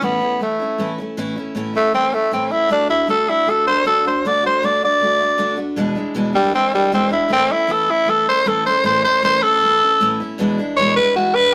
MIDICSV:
0, 0, Header, 1, 3, 480
1, 0, Start_track
1, 0, Key_signature, 3, "major"
1, 0, Tempo, 384123
1, 1458, Time_signature, 4, 2, 24, 8
1, 14423, End_track
2, 0, Start_track
2, 0, Title_t, "Tenor saxophone"
2, 0, Program_c, 0, 66
2, 44, Note_on_c, 0, 59, 85
2, 512, Note_off_c, 0, 59, 0
2, 528, Note_on_c, 0, 57, 69
2, 1183, Note_off_c, 0, 57, 0
2, 2202, Note_on_c, 0, 57, 91
2, 2423, Note_off_c, 0, 57, 0
2, 2430, Note_on_c, 0, 60, 93
2, 2671, Note_on_c, 0, 57, 95
2, 2690, Note_off_c, 0, 60, 0
2, 2897, Note_off_c, 0, 57, 0
2, 2915, Note_on_c, 0, 60, 80
2, 3144, Note_on_c, 0, 64, 96
2, 3163, Note_off_c, 0, 60, 0
2, 3373, Note_off_c, 0, 64, 0
2, 3399, Note_on_c, 0, 62, 90
2, 3616, Note_off_c, 0, 62, 0
2, 3623, Note_on_c, 0, 64, 88
2, 3853, Note_off_c, 0, 64, 0
2, 3873, Note_on_c, 0, 69, 91
2, 4112, Note_on_c, 0, 64, 88
2, 4131, Note_off_c, 0, 69, 0
2, 4372, Note_on_c, 0, 69, 88
2, 4391, Note_off_c, 0, 64, 0
2, 4579, Note_off_c, 0, 69, 0
2, 4586, Note_on_c, 0, 72, 93
2, 4815, Note_off_c, 0, 72, 0
2, 4831, Note_on_c, 0, 69, 93
2, 5058, Note_off_c, 0, 69, 0
2, 5088, Note_on_c, 0, 72, 84
2, 5332, Note_on_c, 0, 74, 101
2, 5351, Note_off_c, 0, 72, 0
2, 5549, Note_off_c, 0, 74, 0
2, 5576, Note_on_c, 0, 72, 92
2, 5809, Note_on_c, 0, 74, 97
2, 5828, Note_off_c, 0, 72, 0
2, 6028, Note_off_c, 0, 74, 0
2, 6056, Note_on_c, 0, 74, 96
2, 6971, Note_off_c, 0, 74, 0
2, 7934, Note_on_c, 0, 55, 103
2, 8171, Note_off_c, 0, 55, 0
2, 8182, Note_on_c, 0, 60, 90
2, 8415, Note_off_c, 0, 60, 0
2, 8429, Note_on_c, 0, 55, 99
2, 8659, Note_off_c, 0, 55, 0
2, 8674, Note_on_c, 0, 60, 88
2, 8897, Note_off_c, 0, 60, 0
2, 8904, Note_on_c, 0, 64, 89
2, 9137, Note_off_c, 0, 64, 0
2, 9152, Note_on_c, 0, 60, 104
2, 9393, Note_on_c, 0, 64, 95
2, 9412, Note_off_c, 0, 60, 0
2, 9647, Note_on_c, 0, 69, 89
2, 9666, Note_off_c, 0, 64, 0
2, 9877, Note_on_c, 0, 64, 95
2, 9896, Note_off_c, 0, 69, 0
2, 10116, Note_on_c, 0, 69, 90
2, 10134, Note_off_c, 0, 64, 0
2, 10343, Note_off_c, 0, 69, 0
2, 10355, Note_on_c, 0, 72, 100
2, 10593, Note_on_c, 0, 69, 90
2, 10612, Note_off_c, 0, 72, 0
2, 10814, Note_off_c, 0, 69, 0
2, 10821, Note_on_c, 0, 72, 94
2, 11056, Note_off_c, 0, 72, 0
2, 11071, Note_on_c, 0, 72, 99
2, 11294, Note_off_c, 0, 72, 0
2, 11302, Note_on_c, 0, 72, 97
2, 11536, Note_off_c, 0, 72, 0
2, 11554, Note_on_c, 0, 72, 97
2, 11778, Note_on_c, 0, 69, 110
2, 11797, Note_off_c, 0, 72, 0
2, 12713, Note_off_c, 0, 69, 0
2, 13454, Note_on_c, 0, 73, 109
2, 13689, Note_off_c, 0, 73, 0
2, 13697, Note_on_c, 0, 71, 104
2, 13933, Note_off_c, 0, 71, 0
2, 13944, Note_on_c, 0, 66, 99
2, 14180, Note_on_c, 0, 71, 117
2, 14198, Note_off_c, 0, 66, 0
2, 14423, Note_off_c, 0, 71, 0
2, 14423, End_track
3, 0, Start_track
3, 0, Title_t, "Steel-string acoustic guitar"
3, 0, Program_c, 1, 25
3, 16, Note_on_c, 1, 45, 74
3, 23, Note_on_c, 1, 52, 79
3, 27, Note_on_c, 1, 57, 83
3, 40, Note_on_c, 1, 64, 81
3, 41, Note_on_c, 1, 61, 89
3, 230, Note_off_c, 1, 64, 0
3, 245, Note_on_c, 1, 64, 49
3, 258, Note_off_c, 1, 45, 0
3, 259, Note_off_c, 1, 61, 0
3, 262, Note_off_c, 1, 52, 0
3, 264, Note_off_c, 1, 57, 0
3, 274, Note_on_c, 1, 61, 48
3, 289, Note_on_c, 1, 57, 39
3, 492, Note_off_c, 1, 57, 0
3, 492, Note_off_c, 1, 64, 0
3, 492, Note_on_c, 1, 52, 59
3, 507, Note_off_c, 1, 61, 0
3, 507, Note_on_c, 1, 57, 55
3, 520, Note_on_c, 1, 61, 64
3, 533, Note_on_c, 1, 64, 71
3, 726, Note_off_c, 1, 64, 0
3, 736, Note_off_c, 1, 52, 0
3, 741, Note_on_c, 1, 64, 56
3, 743, Note_off_c, 1, 57, 0
3, 750, Note_off_c, 1, 61, 0
3, 769, Note_on_c, 1, 61, 51
3, 788, Note_on_c, 1, 57, 43
3, 978, Note_on_c, 1, 45, 80
3, 980, Note_off_c, 1, 61, 0
3, 980, Note_off_c, 1, 64, 0
3, 981, Note_off_c, 1, 57, 0
3, 992, Note_on_c, 1, 52, 79
3, 995, Note_on_c, 1, 61, 91
3, 996, Note_on_c, 1, 57, 80
3, 1005, Note_on_c, 1, 64, 83
3, 1213, Note_off_c, 1, 64, 0
3, 1218, Note_off_c, 1, 45, 0
3, 1225, Note_off_c, 1, 52, 0
3, 1227, Note_off_c, 1, 57, 0
3, 1227, Note_off_c, 1, 61, 0
3, 1228, Note_on_c, 1, 64, 61
3, 1246, Note_on_c, 1, 61, 57
3, 1269, Note_on_c, 1, 57, 56
3, 1460, Note_off_c, 1, 57, 0
3, 1463, Note_off_c, 1, 64, 0
3, 1465, Note_off_c, 1, 61, 0
3, 1465, Note_on_c, 1, 45, 90
3, 1469, Note_on_c, 1, 52, 105
3, 1475, Note_on_c, 1, 57, 97
3, 1480, Note_on_c, 1, 61, 102
3, 1489, Note_on_c, 1, 64, 105
3, 1685, Note_off_c, 1, 64, 0
3, 1700, Note_on_c, 1, 64, 55
3, 1701, Note_off_c, 1, 45, 0
3, 1703, Note_off_c, 1, 52, 0
3, 1705, Note_off_c, 1, 61, 0
3, 1707, Note_off_c, 1, 57, 0
3, 1720, Note_on_c, 1, 61, 63
3, 1738, Note_on_c, 1, 57, 49
3, 1934, Note_on_c, 1, 45, 85
3, 1939, Note_off_c, 1, 64, 0
3, 1940, Note_off_c, 1, 57, 0
3, 1943, Note_off_c, 1, 61, 0
3, 1946, Note_on_c, 1, 52, 83
3, 1955, Note_on_c, 1, 57, 89
3, 1958, Note_on_c, 1, 61, 101
3, 1963, Note_on_c, 1, 64, 102
3, 2149, Note_off_c, 1, 64, 0
3, 2164, Note_on_c, 1, 64, 45
3, 2170, Note_off_c, 1, 61, 0
3, 2175, Note_off_c, 1, 45, 0
3, 2182, Note_off_c, 1, 52, 0
3, 2185, Note_on_c, 1, 61, 49
3, 2186, Note_off_c, 1, 57, 0
3, 2212, Note_on_c, 1, 57, 44
3, 2402, Note_on_c, 1, 52, 56
3, 2409, Note_off_c, 1, 57, 0
3, 2411, Note_off_c, 1, 64, 0
3, 2417, Note_off_c, 1, 61, 0
3, 2424, Note_on_c, 1, 57, 61
3, 2432, Note_on_c, 1, 61, 58
3, 2650, Note_off_c, 1, 52, 0
3, 2655, Note_on_c, 1, 64, 54
3, 2657, Note_off_c, 1, 61, 0
3, 2661, Note_off_c, 1, 57, 0
3, 2672, Note_on_c, 1, 61, 53
3, 2689, Note_on_c, 1, 57, 48
3, 2891, Note_on_c, 1, 45, 73
3, 2896, Note_off_c, 1, 64, 0
3, 2897, Note_off_c, 1, 57, 0
3, 2901, Note_off_c, 1, 61, 0
3, 2904, Note_on_c, 1, 52, 75
3, 2912, Note_on_c, 1, 57, 78
3, 2916, Note_on_c, 1, 61, 88
3, 2916, Note_on_c, 1, 64, 92
3, 3106, Note_off_c, 1, 64, 0
3, 3121, Note_on_c, 1, 64, 56
3, 3126, Note_off_c, 1, 61, 0
3, 3134, Note_off_c, 1, 45, 0
3, 3140, Note_off_c, 1, 52, 0
3, 3141, Note_on_c, 1, 61, 55
3, 3144, Note_off_c, 1, 57, 0
3, 3159, Note_on_c, 1, 57, 47
3, 3360, Note_on_c, 1, 50, 80
3, 3361, Note_off_c, 1, 57, 0
3, 3369, Note_off_c, 1, 64, 0
3, 3376, Note_on_c, 1, 57, 80
3, 3378, Note_off_c, 1, 61, 0
3, 3383, Note_on_c, 1, 62, 89
3, 3392, Note_on_c, 1, 66, 79
3, 3583, Note_off_c, 1, 66, 0
3, 3598, Note_on_c, 1, 66, 60
3, 3605, Note_off_c, 1, 62, 0
3, 3608, Note_off_c, 1, 50, 0
3, 3616, Note_off_c, 1, 57, 0
3, 3620, Note_on_c, 1, 62, 53
3, 3634, Note_on_c, 1, 57, 50
3, 3835, Note_on_c, 1, 50, 79
3, 3837, Note_off_c, 1, 57, 0
3, 3845, Note_off_c, 1, 62, 0
3, 3848, Note_off_c, 1, 66, 0
3, 3852, Note_on_c, 1, 57, 78
3, 3860, Note_on_c, 1, 62, 77
3, 3867, Note_on_c, 1, 66, 80
3, 4067, Note_off_c, 1, 66, 0
3, 4082, Note_on_c, 1, 66, 60
3, 4086, Note_off_c, 1, 50, 0
3, 4092, Note_off_c, 1, 62, 0
3, 4095, Note_off_c, 1, 57, 0
3, 4107, Note_on_c, 1, 62, 52
3, 4120, Note_on_c, 1, 57, 44
3, 4322, Note_on_c, 1, 50, 54
3, 4324, Note_off_c, 1, 57, 0
3, 4330, Note_off_c, 1, 66, 0
3, 4334, Note_off_c, 1, 62, 0
3, 4339, Note_on_c, 1, 57, 55
3, 4349, Note_on_c, 1, 62, 63
3, 4368, Note_on_c, 1, 66, 70
3, 4564, Note_off_c, 1, 66, 0
3, 4570, Note_off_c, 1, 50, 0
3, 4578, Note_off_c, 1, 57, 0
3, 4579, Note_on_c, 1, 66, 49
3, 4583, Note_off_c, 1, 62, 0
3, 4600, Note_on_c, 1, 62, 55
3, 4619, Note_on_c, 1, 57, 46
3, 4802, Note_off_c, 1, 57, 0
3, 4808, Note_off_c, 1, 62, 0
3, 4809, Note_on_c, 1, 50, 86
3, 4817, Note_on_c, 1, 57, 76
3, 4819, Note_off_c, 1, 66, 0
3, 4823, Note_on_c, 1, 62, 75
3, 4832, Note_on_c, 1, 66, 82
3, 5040, Note_off_c, 1, 66, 0
3, 5053, Note_off_c, 1, 50, 0
3, 5055, Note_on_c, 1, 66, 61
3, 5058, Note_off_c, 1, 57, 0
3, 5061, Note_off_c, 1, 62, 0
3, 5077, Note_on_c, 1, 62, 55
3, 5099, Note_on_c, 1, 57, 54
3, 5297, Note_off_c, 1, 66, 0
3, 5301, Note_off_c, 1, 57, 0
3, 5308, Note_off_c, 1, 62, 0
3, 5308, Note_on_c, 1, 50, 78
3, 5316, Note_on_c, 1, 57, 77
3, 5324, Note_on_c, 1, 62, 88
3, 5331, Note_on_c, 1, 66, 102
3, 5519, Note_off_c, 1, 66, 0
3, 5534, Note_on_c, 1, 66, 55
3, 5543, Note_off_c, 1, 50, 0
3, 5543, Note_off_c, 1, 62, 0
3, 5547, Note_off_c, 1, 57, 0
3, 5558, Note_on_c, 1, 62, 51
3, 5575, Note_on_c, 1, 57, 44
3, 5772, Note_off_c, 1, 57, 0
3, 5773, Note_on_c, 1, 50, 74
3, 5777, Note_off_c, 1, 66, 0
3, 5783, Note_off_c, 1, 62, 0
3, 5787, Note_on_c, 1, 57, 82
3, 5798, Note_on_c, 1, 62, 82
3, 5799, Note_on_c, 1, 66, 92
3, 6013, Note_off_c, 1, 66, 0
3, 6016, Note_off_c, 1, 50, 0
3, 6023, Note_off_c, 1, 57, 0
3, 6028, Note_on_c, 1, 66, 60
3, 6029, Note_off_c, 1, 62, 0
3, 6042, Note_on_c, 1, 62, 53
3, 6060, Note_on_c, 1, 57, 42
3, 6254, Note_on_c, 1, 50, 65
3, 6261, Note_off_c, 1, 57, 0
3, 6264, Note_off_c, 1, 66, 0
3, 6271, Note_off_c, 1, 62, 0
3, 6276, Note_on_c, 1, 57, 60
3, 6288, Note_on_c, 1, 62, 66
3, 6301, Note_on_c, 1, 66, 67
3, 6476, Note_off_c, 1, 66, 0
3, 6491, Note_on_c, 1, 66, 53
3, 6497, Note_off_c, 1, 50, 0
3, 6498, Note_off_c, 1, 62, 0
3, 6508, Note_off_c, 1, 57, 0
3, 6513, Note_on_c, 1, 62, 54
3, 6529, Note_on_c, 1, 57, 45
3, 6710, Note_off_c, 1, 57, 0
3, 6716, Note_off_c, 1, 62, 0
3, 6717, Note_on_c, 1, 50, 85
3, 6725, Note_on_c, 1, 57, 97
3, 6729, Note_off_c, 1, 66, 0
3, 6731, Note_on_c, 1, 62, 96
3, 6744, Note_on_c, 1, 66, 104
3, 6930, Note_off_c, 1, 66, 0
3, 6945, Note_on_c, 1, 66, 64
3, 6950, Note_off_c, 1, 62, 0
3, 6965, Note_on_c, 1, 62, 66
3, 6969, Note_off_c, 1, 50, 0
3, 6969, Note_off_c, 1, 57, 0
3, 6984, Note_on_c, 1, 57, 52
3, 7201, Note_on_c, 1, 40, 93
3, 7203, Note_off_c, 1, 66, 0
3, 7207, Note_off_c, 1, 62, 0
3, 7209, Note_on_c, 1, 47, 92
3, 7211, Note_off_c, 1, 57, 0
3, 7216, Note_on_c, 1, 52, 89
3, 7216, Note_on_c, 1, 56, 107
3, 7222, Note_on_c, 1, 62, 101
3, 7228, Note_on_c, 1, 64, 106
3, 7419, Note_off_c, 1, 64, 0
3, 7434, Note_on_c, 1, 64, 60
3, 7436, Note_off_c, 1, 62, 0
3, 7447, Note_off_c, 1, 56, 0
3, 7451, Note_off_c, 1, 40, 0
3, 7451, Note_on_c, 1, 62, 59
3, 7455, Note_off_c, 1, 47, 0
3, 7459, Note_off_c, 1, 52, 0
3, 7462, Note_on_c, 1, 56, 58
3, 7477, Note_on_c, 1, 52, 52
3, 7676, Note_off_c, 1, 56, 0
3, 7678, Note_on_c, 1, 40, 88
3, 7679, Note_off_c, 1, 52, 0
3, 7683, Note_on_c, 1, 47, 88
3, 7687, Note_off_c, 1, 62, 0
3, 7688, Note_off_c, 1, 64, 0
3, 7691, Note_on_c, 1, 56, 93
3, 7694, Note_on_c, 1, 52, 90
3, 7702, Note_on_c, 1, 62, 97
3, 7709, Note_on_c, 1, 64, 96
3, 7892, Note_off_c, 1, 64, 0
3, 7907, Note_off_c, 1, 62, 0
3, 7907, Note_on_c, 1, 64, 53
3, 7919, Note_off_c, 1, 56, 0
3, 7922, Note_on_c, 1, 62, 55
3, 7928, Note_off_c, 1, 52, 0
3, 7930, Note_off_c, 1, 40, 0
3, 7932, Note_off_c, 1, 47, 0
3, 7934, Note_on_c, 1, 56, 43
3, 7943, Note_on_c, 1, 52, 40
3, 8148, Note_off_c, 1, 52, 0
3, 8157, Note_off_c, 1, 56, 0
3, 8163, Note_on_c, 1, 52, 60
3, 8165, Note_off_c, 1, 64, 0
3, 8172, Note_off_c, 1, 62, 0
3, 8172, Note_on_c, 1, 56, 61
3, 8187, Note_on_c, 1, 62, 68
3, 8202, Note_on_c, 1, 64, 65
3, 8383, Note_off_c, 1, 64, 0
3, 8398, Note_off_c, 1, 62, 0
3, 8398, Note_on_c, 1, 64, 57
3, 8407, Note_off_c, 1, 56, 0
3, 8413, Note_off_c, 1, 52, 0
3, 8413, Note_on_c, 1, 62, 49
3, 8422, Note_on_c, 1, 56, 49
3, 8434, Note_on_c, 1, 52, 50
3, 8638, Note_off_c, 1, 52, 0
3, 8643, Note_on_c, 1, 40, 85
3, 8645, Note_off_c, 1, 56, 0
3, 8647, Note_off_c, 1, 62, 0
3, 8650, Note_off_c, 1, 64, 0
3, 8650, Note_on_c, 1, 47, 82
3, 8653, Note_on_c, 1, 52, 79
3, 8660, Note_on_c, 1, 56, 83
3, 8662, Note_on_c, 1, 62, 87
3, 8668, Note_on_c, 1, 64, 82
3, 8854, Note_off_c, 1, 64, 0
3, 8864, Note_off_c, 1, 62, 0
3, 8869, Note_on_c, 1, 64, 64
3, 8877, Note_off_c, 1, 56, 0
3, 8879, Note_on_c, 1, 62, 60
3, 8892, Note_on_c, 1, 56, 50
3, 8893, Note_off_c, 1, 40, 0
3, 8893, Note_off_c, 1, 52, 0
3, 8897, Note_off_c, 1, 47, 0
3, 8908, Note_on_c, 1, 52, 46
3, 9098, Note_off_c, 1, 52, 0
3, 9103, Note_on_c, 1, 45, 74
3, 9113, Note_on_c, 1, 52, 75
3, 9115, Note_off_c, 1, 64, 0
3, 9116, Note_off_c, 1, 56, 0
3, 9121, Note_on_c, 1, 57, 78
3, 9123, Note_off_c, 1, 62, 0
3, 9128, Note_on_c, 1, 61, 84
3, 9130, Note_on_c, 1, 64, 97
3, 9335, Note_off_c, 1, 64, 0
3, 9350, Note_on_c, 1, 64, 56
3, 9352, Note_off_c, 1, 61, 0
3, 9363, Note_off_c, 1, 45, 0
3, 9367, Note_on_c, 1, 61, 52
3, 9368, Note_off_c, 1, 52, 0
3, 9372, Note_off_c, 1, 57, 0
3, 9386, Note_on_c, 1, 57, 46
3, 9589, Note_on_c, 1, 45, 78
3, 9594, Note_off_c, 1, 57, 0
3, 9600, Note_on_c, 1, 52, 80
3, 9602, Note_off_c, 1, 64, 0
3, 9603, Note_off_c, 1, 61, 0
3, 9609, Note_on_c, 1, 57, 71
3, 9617, Note_on_c, 1, 64, 88
3, 9618, Note_on_c, 1, 61, 80
3, 9813, Note_off_c, 1, 64, 0
3, 9828, Note_on_c, 1, 64, 51
3, 9833, Note_off_c, 1, 61, 0
3, 9846, Note_off_c, 1, 45, 0
3, 9848, Note_off_c, 1, 57, 0
3, 9848, Note_on_c, 1, 61, 46
3, 9852, Note_off_c, 1, 52, 0
3, 9863, Note_on_c, 1, 57, 49
3, 10068, Note_on_c, 1, 52, 57
3, 10074, Note_off_c, 1, 57, 0
3, 10081, Note_off_c, 1, 61, 0
3, 10086, Note_off_c, 1, 64, 0
3, 10089, Note_on_c, 1, 57, 57
3, 10096, Note_on_c, 1, 61, 63
3, 10110, Note_on_c, 1, 64, 62
3, 10296, Note_off_c, 1, 64, 0
3, 10311, Note_on_c, 1, 64, 51
3, 10318, Note_off_c, 1, 61, 0
3, 10326, Note_off_c, 1, 52, 0
3, 10333, Note_on_c, 1, 61, 47
3, 10337, Note_off_c, 1, 57, 0
3, 10356, Note_on_c, 1, 57, 49
3, 10556, Note_on_c, 1, 45, 81
3, 10560, Note_off_c, 1, 57, 0
3, 10567, Note_off_c, 1, 61, 0
3, 10568, Note_off_c, 1, 64, 0
3, 10568, Note_on_c, 1, 52, 76
3, 10575, Note_on_c, 1, 57, 97
3, 10582, Note_on_c, 1, 61, 81
3, 10593, Note_on_c, 1, 64, 87
3, 10792, Note_off_c, 1, 64, 0
3, 10807, Note_on_c, 1, 64, 52
3, 10810, Note_off_c, 1, 45, 0
3, 10811, Note_off_c, 1, 61, 0
3, 10817, Note_off_c, 1, 52, 0
3, 10820, Note_off_c, 1, 57, 0
3, 10826, Note_on_c, 1, 61, 55
3, 10847, Note_on_c, 1, 57, 51
3, 11038, Note_off_c, 1, 57, 0
3, 11041, Note_on_c, 1, 45, 79
3, 11047, Note_off_c, 1, 64, 0
3, 11047, Note_on_c, 1, 52, 86
3, 11053, Note_off_c, 1, 61, 0
3, 11053, Note_on_c, 1, 57, 85
3, 11062, Note_on_c, 1, 64, 99
3, 11068, Note_on_c, 1, 61, 84
3, 11269, Note_off_c, 1, 64, 0
3, 11284, Note_on_c, 1, 64, 56
3, 11285, Note_off_c, 1, 61, 0
3, 11293, Note_off_c, 1, 45, 0
3, 11296, Note_off_c, 1, 52, 0
3, 11299, Note_off_c, 1, 57, 0
3, 11300, Note_on_c, 1, 61, 54
3, 11319, Note_on_c, 1, 57, 49
3, 11528, Note_on_c, 1, 45, 85
3, 11531, Note_off_c, 1, 57, 0
3, 11532, Note_off_c, 1, 61, 0
3, 11534, Note_off_c, 1, 64, 0
3, 11535, Note_on_c, 1, 52, 73
3, 11546, Note_on_c, 1, 57, 90
3, 11547, Note_on_c, 1, 61, 84
3, 11557, Note_on_c, 1, 64, 88
3, 11745, Note_off_c, 1, 64, 0
3, 11760, Note_on_c, 1, 64, 53
3, 11773, Note_off_c, 1, 61, 0
3, 11776, Note_off_c, 1, 45, 0
3, 11780, Note_off_c, 1, 52, 0
3, 11785, Note_off_c, 1, 57, 0
3, 11788, Note_on_c, 1, 61, 52
3, 11802, Note_on_c, 1, 57, 47
3, 12013, Note_off_c, 1, 64, 0
3, 12016, Note_off_c, 1, 57, 0
3, 12021, Note_on_c, 1, 52, 63
3, 12026, Note_off_c, 1, 61, 0
3, 12031, Note_on_c, 1, 57, 64
3, 12047, Note_on_c, 1, 61, 71
3, 12061, Note_on_c, 1, 64, 64
3, 12253, Note_off_c, 1, 64, 0
3, 12263, Note_off_c, 1, 52, 0
3, 12268, Note_off_c, 1, 57, 0
3, 12268, Note_on_c, 1, 64, 54
3, 12276, Note_off_c, 1, 61, 0
3, 12291, Note_on_c, 1, 61, 54
3, 12307, Note_on_c, 1, 57, 44
3, 12496, Note_off_c, 1, 57, 0
3, 12501, Note_on_c, 1, 45, 90
3, 12506, Note_off_c, 1, 64, 0
3, 12507, Note_on_c, 1, 52, 102
3, 12510, Note_off_c, 1, 61, 0
3, 12511, Note_on_c, 1, 57, 95
3, 12525, Note_on_c, 1, 61, 101
3, 12529, Note_on_c, 1, 64, 103
3, 12731, Note_off_c, 1, 64, 0
3, 12743, Note_off_c, 1, 45, 0
3, 12746, Note_off_c, 1, 52, 0
3, 12746, Note_on_c, 1, 64, 65
3, 12748, Note_off_c, 1, 57, 0
3, 12752, Note_off_c, 1, 61, 0
3, 12767, Note_on_c, 1, 61, 61
3, 12783, Note_on_c, 1, 57, 52
3, 12972, Note_on_c, 1, 40, 94
3, 12981, Note_on_c, 1, 47, 98
3, 12985, Note_off_c, 1, 64, 0
3, 12989, Note_off_c, 1, 57, 0
3, 12989, Note_on_c, 1, 52, 95
3, 12994, Note_off_c, 1, 61, 0
3, 12994, Note_on_c, 1, 56, 100
3, 12999, Note_on_c, 1, 62, 107
3, 13003, Note_on_c, 1, 64, 97
3, 13209, Note_off_c, 1, 64, 0
3, 13218, Note_off_c, 1, 40, 0
3, 13223, Note_off_c, 1, 47, 0
3, 13223, Note_off_c, 1, 62, 0
3, 13224, Note_on_c, 1, 64, 67
3, 13227, Note_off_c, 1, 52, 0
3, 13229, Note_off_c, 1, 56, 0
3, 13238, Note_on_c, 1, 62, 62
3, 13247, Note_on_c, 1, 56, 61
3, 13260, Note_on_c, 1, 52, 57
3, 13464, Note_off_c, 1, 64, 0
3, 13471, Note_off_c, 1, 62, 0
3, 13475, Note_off_c, 1, 52, 0
3, 13475, Note_on_c, 1, 40, 76
3, 13476, Note_off_c, 1, 56, 0
3, 13483, Note_on_c, 1, 47, 80
3, 13490, Note_on_c, 1, 52, 82
3, 13492, Note_on_c, 1, 56, 93
3, 13498, Note_on_c, 1, 62, 96
3, 13501, Note_on_c, 1, 64, 89
3, 13691, Note_off_c, 1, 64, 0
3, 13706, Note_on_c, 1, 64, 58
3, 13708, Note_off_c, 1, 62, 0
3, 13710, Note_off_c, 1, 40, 0
3, 13714, Note_off_c, 1, 47, 0
3, 13717, Note_off_c, 1, 52, 0
3, 13718, Note_off_c, 1, 56, 0
3, 13723, Note_on_c, 1, 62, 48
3, 13738, Note_on_c, 1, 56, 52
3, 13747, Note_on_c, 1, 52, 43
3, 13916, Note_off_c, 1, 52, 0
3, 13930, Note_off_c, 1, 56, 0
3, 13931, Note_on_c, 1, 52, 62
3, 13941, Note_off_c, 1, 62, 0
3, 13945, Note_off_c, 1, 64, 0
3, 13945, Note_on_c, 1, 56, 59
3, 13956, Note_on_c, 1, 62, 70
3, 13977, Note_on_c, 1, 64, 73
3, 14172, Note_off_c, 1, 64, 0
3, 14178, Note_off_c, 1, 52, 0
3, 14182, Note_off_c, 1, 62, 0
3, 14185, Note_off_c, 1, 56, 0
3, 14187, Note_on_c, 1, 64, 51
3, 14197, Note_on_c, 1, 62, 52
3, 14213, Note_on_c, 1, 56, 50
3, 14220, Note_on_c, 1, 52, 45
3, 14409, Note_off_c, 1, 52, 0
3, 14419, Note_off_c, 1, 56, 0
3, 14423, Note_off_c, 1, 62, 0
3, 14423, Note_off_c, 1, 64, 0
3, 14423, End_track
0, 0, End_of_file